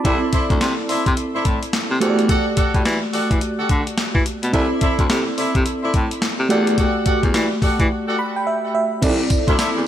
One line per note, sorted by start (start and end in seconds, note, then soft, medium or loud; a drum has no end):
0.00 0.21 A5 medium
0.04 0.19 C2 loud
0.04 1.97 C4 medium
0.04 1.97 E4 medium
0.04 0.21 E4 medium
0.04 0.20 A4 medium
0.04 1.98 A4 medium
0.04 0.20 C5 medium
0.04 0.21 D5 medium
0.04 1.98 D5 medium
0.04 0.21 E5 loud
0.04 kick loud
0.04 closed hi-hat medium
0.33 0.49 E4 medium
0.33 0.48 A4 medium
0.33 0.49 C5 medium
0.33 0.49 D5 medium
0.33 0.49 E5 medium
0.33 kick medium
0.33 closed hi-hat medium
0.50 0.59 D2 medium
0.50 kick loud
0.50 closed hi-hat soft
0.61 0.75 C3 medium
0.61 snare loud
0.61 clap medium
0.61 closed hi-hat medium
0.89 0.96 C3 medium
0.89 1.05 E4 medium
0.89 1.04 A4 medium
0.89 1.05 C5 medium
0.89 1.05 D5 medium
0.89 1.05 E5 medium
0.89 open hi-hat medium
1.06 1.15 C3 loud
1.06 kick medium
1.06 closed hi-hat medium
1.17 closed hi-hat medium
1.34 1.39 A2 soft
1.34 1.44 E4 medium
1.34 1.44 A4 medium
1.34 1.44 C5 medium
1.34 1.44 D5 medium
1.34 1.44 E5 medium
1.45 1.59 A2 medium
1.45 kick medium
1.45 closed hi-hat medium
1.63 closed hi-hat soft
1.73 snare loud
1.73 clap medium
1.73 closed hi-hat medium
1.91 1.99 C3 loud
2.00 2.37 E2 loud
2.00 4.21 A3 medium
2.00 4.22 F#4 medium
2.00 2.17 F#4 medium
2.00 2.17 G4 medium
2.00 4.22 G4 medium
2.00 2.17 A4 medium
2.00 2.10 C5 medium
2.00 2.17 D5 medium
2.00 2.17 F#5 medium
2.00 closed hi-hat medium
2.09 4.26 D5 medium
2.19 closed hi-hat soft
2.29 2.45 F#4 medium
2.29 2.45 G4 medium
2.29 2.45 A4 medium
2.29 2.45 D5 medium
2.29 2.45 F#5 loud
2.29 kick loud
2.29 closed hi-hat medium
2.57 2.73 F#4 medium
2.57 2.73 G4 medium
2.57 2.73 A4 medium
2.57 2.73 D5 medium
2.57 2.73 F#5 medium
2.57 kick loud
2.57 closed hi-hat medium
2.74 2.83 A2 medium
2.74 kick medium
2.74 closed hi-hat soft
2.85 2.99 E3 loud
2.85 snare loud
2.85 clap medium
2.85 closed hi-hat medium
3.13 3.20 E3 soft
3.13 3.29 F#4 medium
3.13 3.29 G4 medium
3.13 3.29 A4 medium
3.13 3.29 D5 medium
3.13 3.29 F#5 medium
3.13 open hi-hat medium
3.31 3.39 E3 medium
3.31 kick medium
3.31 closed hi-hat medium
3.41 closed hi-hat medium
3.59 3.63 D3 soft
3.59 3.69 F#4 medium
3.59 3.68 G4 medium
3.59 3.68 A4 medium
3.59 3.68 D5 medium
3.59 3.69 F#5 medium
3.69 3.83 D3 medium
3.69 kick medium
3.69 closed hi-hat medium
3.87 closed hi-hat medium
3.98 snare loud
3.98 clap medium
3.98 closed hi-hat medium
4.15 4.23 E3 medium
4.15 kick medium
4.26 closed hi-hat medium
4.43 4.51 B2 medium
4.43 closed hi-hat medium
4.53 4.67 C2 loud
4.53 6.46 C4 medium
4.53 6.46 E4 medium
4.53 4.69 E4 loud
4.53 4.69 A4 medium
4.53 6.46 A4 medium
4.53 4.69 C5 medium
4.53 4.69 D5 medium
4.53 6.47 D5 medium
4.53 4.69 E5 loud
4.53 kick loud
4.53 closed hi-hat medium
4.81 4.97 E4 medium
4.81 4.97 A4 medium
4.81 4.97 C5 medium
4.81 4.97 D5 medium
4.81 4.97 E5 medium
4.81 kick loud
4.81 closed hi-hat medium
4.99 5.07 D2 medium
4.99 kick medium
4.99 closed hi-hat medium
5.10 5.23 C3 medium
5.10 snare loud
5.10 clap medium
5.10 closed hi-hat medium
5.37 5.45 C3 medium
5.37 5.53 E4 medium
5.37 5.53 A4 medium
5.37 5.53 C5 medium
5.37 5.53 D5 medium
5.37 5.53 E5 medium
5.37 open hi-hat medium
5.55 5.63 C3 loud
5.55 kick medium
5.55 closed hi-hat medium
5.66 closed hi-hat medium
5.83 5.88 A2 soft
5.83 5.93 E4 medium
5.83 5.92 A4 medium
5.83 5.93 C5 medium
5.83 5.93 D5 medium
5.83 5.93 E5 medium
5.94 6.07 A2 loud
5.94 kick medium
5.94 closed hi-hat medium
6.11 closed hi-hat medium
6.22 snare loud
6.22 clap medium
6.22 closed hi-hat medium
6.39 6.48 C3 loud
6.49 6.85 E2 loud
6.49 8.70 A3 medium
6.49 8.70 F#4 medium
6.49 6.66 F#4 medium
6.49 6.65 G4 medium
6.49 8.71 G4 medium
6.49 6.65 A4 medium
6.49 6.65 D5 medium
6.49 8.71 D5 medium
6.49 6.66 F#5 medium
6.49 closed hi-hat medium
6.67 closed hi-hat medium
6.78 6.94 F#4 medium
6.78 6.93 G4 medium
6.78 6.93 A4 medium
6.78 6.93 D5 medium
6.78 6.94 F#5 medium
6.78 kick loud
6.78 closed hi-hat loud
7.06 7.22 F#4 medium
7.06 7.21 G4 medium
7.06 7.21 A4 medium
7.06 7.22 D5 medium
7.06 7.22 F#5 medium
7.06 kick loud
7.06 closed hi-hat medium
7.23 7.32 E2 medium
7.23 kick loud
7.23 closed hi-hat soft
7.34 7.48 E3 loud
7.34 snare loud
7.34 clap medium
7.34 closed hi-hat medium
7.62 7.69 E3 medium
7.62 7.78 F#4 medium
7.62 7.77 G4 medium
7.62 7.78 A4 medium
7.62 7.78 D5 medium
7.62 7.78 F#5 medium
7.62 kick loud
7.62 open hi-hat medium
7.79 7.88 E3 loud
7.79 kick medium
7.79 closed hi-hat medium
8.07 8.17 F#4 medium
8.07 8.17 G4 medium
8.07 8.17 A4 medium
8.07 8.17 D5 medium
8.07 8.17 F#5 medium
8.19 8.35 B5 medium
8.36 8.46 G5 medium
8.47 8.73 E5 medium
8.75 9.00 E5 medium
9.02 9.24 C2 loud
9.02 9.87 C4 medium
9.02 9.10 D#4 medium
9.02 9.87 A4 medium
9.02 9.87 D5 medium
9.02 kick loud
9.02 closed hi-hat medium
9.02 crash loud
9.02 tambourine medium
9.09 9.87 E4 medium
9.30 kick loud
9.30 closed hi-hat medium
9.30 tambourine medium
9.48 9.56 D2 loud
9.48 9.57 E4 medium
9.48 9.57 A4 medium
9.48 9.57 C5 medium
9.48 9.57 D5 medium
9.48 9.57 E5 medium
9.48 kick loud
9.48 closed hi-hat soft
9.58 9.74 E4 medium
9.58 9.74 A4 medium
9.58 9.74 C5 medium
9.58 9.74 D5 medium
9.58 9.74 E5 medium
9.58 snare loud
9.58 clap medium
9.58 closed hi-hat medium
9.58 tambourine medium
9.76 9.84 E2 medium